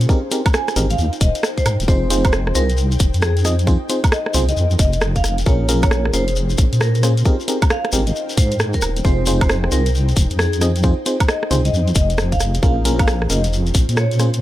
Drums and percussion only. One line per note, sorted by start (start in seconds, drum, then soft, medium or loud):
0.01 closed hi-hat medium
0.01 shekere soft
0.09 kick loud
0.09 shekere soft
0.31 open hi-hat loud
0.31 shekere medium
0.46 kick loud
0.46 closed hi-hat medium
0.46 high woodblock medium
0.46 shekere soft
0.54 cross-stick loud
0.54 shekere medium
0.68 cross-stick medium
0.68 closed hi-hat soft
0.68 shekere soft
0.76 open hi-hat medium
0.76 shekere medium
0.90 closed hi-hat medium
0.90 shekere soft
0.98 shekere soft
1.13 closed hi-hat soft
1.13 shekere soft
1.21 kick loud
1.21 open hi-hat loud
1.21 shekere medium
1.35 closed hi-hat medium
1.35 shekere soft
1.43 cross-stick loud
1.43 shekere medium
1.58 kick medium
1.58 closed hi-hat medium
1.58 shekere soft
1.66 cross-stick medium
1.66 open hi-hat loud
1.66 high woodblock medium
1.66 shekere medium
1.80 closed hi-hat medium
1.80 shekere soft
1.88 kick loud
1.88 shekere medium
2.10 open hi-hat loud
2.10 shekere medium
2.25 kick loud
2.25 closed hi-hat medium
2.25 high woodblock medium
2.25 shekere soft
2.33 cross-stick loud
2.33 shekere medium
2.47 cross-stick medium
2.55 open hi-hat medium
2.55 shekere medium
2.70 closed hi-hat medium
2.70 shekere soft
2.77 shekere soft
2.92 closed hi-hat soft
2.92 shekere soft
2.99 kick loud
2.99 open hi-hat loud
2.99 shekere medium
3.14 closed hi-hat medium
3.14 shekere soft
3.22 cross-stick loud
3.22 shekere medium
3.37 closed hi-hat medium
3.37 shekere soft
3.45 cross-stick medium
3.45 open hi-hat loud
3.45 shekere loud
3.59 closed hi-hat medium
3.59 shekere soft
3.67 kick loud
3.67 shekere medium
3.89 open hi-hat loud
3.89 shekere medium
4.04 kick loud
4.04 closed hi-hat medium
4.04 high woodblock medium
4.04 shekere soft
4.12 cross-stick loud
4.12 shekere medium
4.26 cross-stick medium
4.34 open hi-hat loud
4.34 shekere loud
4.49 closed hi-hat medium
4.49 shekere soft
4.57 shekere medium
4.71 closed hi-hat soft
4.71 shekere soft
4.79 kick loud
4.79 open hi-hat loud
4.79 shekere medium
4.93 closed hi-hat medium
4.93 shekere soft
5.01 cross-stick loud
5.01 shekere medium
5.16 kick medium
5.16 closed hi-hat medium
5.16 shekere soft
5.24 cross-stick medium
5.24 open hi-hat medium
5.24 shekere loud
5.38 closed hi-hat medium
5.38 shekere soft
5.46 kick loud
5.46 shekere medium
5.69 open hi-hat loud
5.69 shekere loud
5.83 kick loud
5.83 closed hi-hat medium
5.83 high woodblock medium
5.83 shekere soft
5.91 cross-stick loud
5.91 shekere medium
6.05 cross-stick medium
6.14 open hi-hat medium
6.14 shekere loud
6.28 closed hi-hat medium
6.28 shekere soft
6.36 shekere medium
6.50 closed hi-hat soft
6.50 shekere soft
6.58 kick loud
6.58 open hi-hat loud
6.58 shekere loud
6.73 closed hi-hat medium
6.73 shekere soft
6.81 cross-stick loud
6.81 shekere medium
6.95 closed hi-hat soft
6.95 shekere soft
7.03 cross-stick medium
7.03 open hi-hat medium
7.03 shekere loud
7.17 closed hi-hat medium
7.17 shekere soft
7.25 kick loud
7.25 shekere medium
7.40 shekere soft
7.48 open hi-hat loud
7.48 shekere medium
7.62 kick loud
7.62 closed hi-hat medium
7.62 high woodblock medium
7.62 shekere soft
7.70 cross-stick loud
7.70 shekere soft
7.85 cross-stick medium
7.85 closed hi-hat soft
7.92 open hi-hat medium
7.92 shekere loud
8.07 closed hi-hat medium
8.07 shekere soft
8.16 shekere medium
8.29 closed hi-hat soft
8.29 shekere soft
8.37 kick loud
8.37 open hi-hat loud
8.37 shekere medium
8.51 closed hi-hat medium
8.51 shekere soft
8.59 cross-stick loud
8.59 shekere medium
8.73 kick medium
8.73 closed hi-hat medium
8.73 shekere soft
8.82 cross-stick medium
8.82 open hi-hat medium
8.82 high woodblock medium
8.82 shekere loud
8.97 closed hi-hat medium
8.97 shekere soft
9.04 kick loud
9.04 shekere soft
9.26 open hi-hat loud
9.26 shekere loud
9.41 kick loud
9.41 closed hi-hat medium
9.41 high woodblock medium
9.41 shekere soft
9.49 cross-stick loud
9.49 shekere soft
9.64 cross-stick medium
9.72 open hi-hat medium
9.72 shekere medium
9.86 closed hi-hat medium
9.86 shekere soft
9.95 shekere medium
10.09 closed hi-hat soft
10.09 shekere soft
10.16 kick loud
10.16 open hi-hat loud
10.16 shekere loud
10.30 closed hi-hat medium
10.30 shekere soft
10.39 cross-stick loud
10.39 shekere medium
10.53 closed hi-hat medium
10.53 shekere soft
10.61 cross-stick medium
10.61 open hi-hat medium
10.61 shekere loud
10.76 closed hi-hat medium
10.76 shekere soft
10.83 kick loud
10.83 shekere soft
11.06 open hi-hat loud
11.06 shekere medium
11.20 kick loud
11.20 closed hi-hat medium
11.20 high woodblock medium
11.20 shekere soft
11.28 cross-stick loud
11.28 shekere medium
11.43 cross-stick medium
11.51 open hi-hat medium
11.51 shekere medium
11.65 closed hi-hat medium
11.65 shekere soft
11.74 shekere medium
11.88 closed hi-hat soft
11.88 shekere soft
11.95 kick loud
11.95 open hi-hat loud
11.95 shekere medium
12.10 closed hi-hat medium
12.10 shekere soft
12.18 cross-stick loud
12.18 shekere medium
12.32 kick medium
12.32 closed hi-hat medium
12.32 shekere soft
12.40 cross-stick medium
12.40 open hi-hat medium
12.40 shekere medium
12.54 closed hi-hat medium
12.54 shekere soft
12.63 kick loud
12.63 shekere medium
12.85 open hi-hat loud
12.85 shekere medium
12.99 kick loud
12.99 closed hi-hat medium
12.99 high woodblock medium
12.99 shekere soft
13.08 cross-stick loud
13.08 shekere medium
13.22 cross-stick medium
13.30 open hi-hat loud
13.30 shekere medium
13.44 closed hi-hat medium
13.44 shekere soft
13.53 shekere medium
13.67 closed hi-hat soft
13.67 shekere soft
13.74 kick loud
13.74 open hi-hat loud
13.74 shekere loud
13.89 closed hi-hat medium
13.89 shekere soft
13.97 cross-stick loud
13.97 shekere soft
14.11 closed hi-hat medium
14.11 shekere soft
14.19 cross-stick medium
14.19 open hi-hat medium
14.19 shekere medium
14.34 closed hi-hat medium
14.34 shekere soft